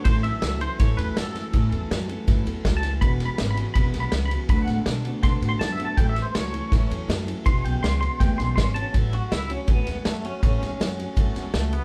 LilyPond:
<<
  \new Staff \with { instrumentName = "Clean electric guitar" } { \time 4/4 \key a \major \tempo 4 = 162 c''8 e''4 c''8 cis''8 b'8 a'4~ | a'4 r2 \tuplet 3/2 { r8 a''8 r8 } | \tuplet 3/2 { b''8 r8 b''8 r8 b''8 r8 b''8 r8 b''8 r8 b''8 r8 } | \tuplet 3/2 { b''8 fis''8. r16 } r4 \tuplet 3/2 { c'''8 r8 c'''8 a''8 e''8 a''8 } |
\tuplet 3/2 { g''8 e''8 c''8 } cis''2 r4 | c'''8 g''8 c'''8 c'''8 g''8 c'''8 <cis' c'''>8 <cis' a''>8 | e'8 fis'8 e'8 cis'8 b4 a8 cis'8 | cis'2. a8 b8 | }
  \new Staff \with { instrumentName = "Steel-string acoustic guitar" } { \time 4/4 \key a \major <a, e fis a cis' a'>8 <fis a cis' a'>8 <fis a cis' a'>8 <fis a cis' a'>8 <a, e fis a cis' a'>8 <fis a cis' a'>8 <fis a cis' a'>8 <fis a cis' a'>8 | <a, e fis a cis' a'>8 <fis a cis' a'>8 <fis a cis' a'>8 <fis a cis' a'>8 <a, e fis a cis' a'>8 <fis a cis' a'>8 <fis a cis' a'>8 <fis a cis' a'>8 | <e gis b cis' gis'>8 <b cis' gis'>8 <gis b cis' gis'>8 <b cis' gis'>8 <e gis b cis' gis'>8 <b cis' gis'>8 <gis b cis' gis'>8 <b cis' gis'>8 | <d fis b fis' a'>8 <b fis' a'>8 <fis b fis' a'>8 <b fis' a'>8 <d fis b fis' a'>8 <b fis' a'>8 <fis b fis' a'>8 <b fis' a'>8 |
<a, e fis a cis' a'>8 <fis a cis' a'>8 <fis a cis' a'>8 <fis a cis' a'>8 <a, e fis a cis' a'>8 <fis a cis' a'>8 <fis a cis' a'>8 <fis a cis' a'>8 | <e gis b cis' gis'>8 <b cis' gis'>8 <gis b cis' gis'>8 <b cis' gis'>8 <e gis b cis' gis'>8 <b cis' gis'>8 <gis b cis' gis'>8 <b cis' gis'>8 | <a, e fis a cis' fis'>8 <fis a cis' fis'>8 <fis a cis' fis'>8 <fis a cis' fis'>8 <a, e fis a cis' fis'>8 <fis a cis' fis'>8 <fis a cis' fis'>8 <fis a cis' fis'>8 | <a, e fis a cis' fis'>8 <fis a cis' fis'>8 <fis a cis' fis'>8 <fis a cis' fis'>8 <a, e fis a cis' fis'>8 <fis a cis' fis'>8 <fis a cis' fis'>8 <fis a cis' fis'>8 | }
  \new Staff \with { instrumentName = "Clean electric guitar" } { \clef bass \time 4/4 \key a \major <a, e>4 <a, fis>8 <a, e>8 <a, e>4 <a, fis>8 <a, e>8 | <a, e>4 <a, fis>8 <a, e>8 <a, e>4 <a, fis>8 <a, e>8 | <e, b,>4 <e, cis>8 <e, b,>8 <e, b,>4 <e, cis>8 <e, b,>8 | <d a>4 <d b>8 <d a>8 <d a>4 <d b>8 <d a>8 |
<a, e>4 <a, fis>8 <a, e>8 <a, e>4 <a, fis>8 <a, e>8 | <e, b,>4 <e, cis>8 <e, b,>8 <e, b,>4 e,8 <e, b,>8 | r1 | r1 | }
  \new Staff \with { instrumentName = "Upright bass" } { \clef bass \time 4/4 \key a \major a,,4 cis,4 a,,8 e,8 fis,4 | a,,8 e,8 fis,4 g,8 e,8 cis,4 | e,,4 gis,,4 e,,8 b,,8 cis,4 | d,8 a,8 b,4 b,8 a,8 fis,4 |
a,,4 cis,4 a,,8 e,8 fis,4 | e,,8 b,,8 cis,4 d,8 b,,8 gis,,4 | a,,4 cis,4 a,,8 e,8 fis,4 | a,,8 e,8 fis,4 g,8 e,8 cis,4 | }
  \new DrumStaff \with { instrumentName = "Drums" } \drummode { \time 4/4 <bd cymr>8 cymr8 <cymr sn>8 cymr8 <bd cymr sn>8 cymr8 <cymr sn>8 <cymr sn>8 | <bd cymr>8 cymr8 <cymr sn>8 cymr8 <bd cymr sn>8 cymr8 <bd cymr sn>8 <cymr sn>8 | <bd cymr>8 <cymr sn>8 <cymr sn>8 cymr8 <bd cymr>8 <cymr sn>8 <cymr sn>8 cymr8 | <bd cymr>8 <cymr sn>8 <cymr sn>8 cymr8 <bd cymr sn>8 cymr8 <cymr sn>8 cymr8 |
<bd cymr>8 <cymr sn>8 <cymr sn>8 cymr8 <bd cymr sn>8 cymr8 <cymr sn>8 cymr8 | <bd cymr>8 cymr8 <cymr sn>8 cymr8 <bd cymr sn>8 <cymr sn>8 <bd cymr sn>8 cymr8 | <bd cymr>8 cymr8 <cymr sn>8 cymr8 <bd cymr>8 <cymr sn>8 <cymr sn>8 cymr8 | <bd cymr>8 <cymr sn>8 <cymr sn>8 cymr8 <bd cymr>8 <cymr sn>8 <cymr sn>8 cymr8 | }
>>